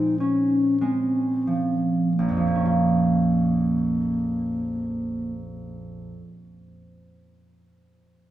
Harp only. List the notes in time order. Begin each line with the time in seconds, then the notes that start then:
Already playing: A#2 F3 G#3 C4
0.20 C#4
0.81 G#3
1.47 F3
2.19 A#1
2.29 F2
2.37 F3
2.47 A#3
2.55 C#4
2.65 F4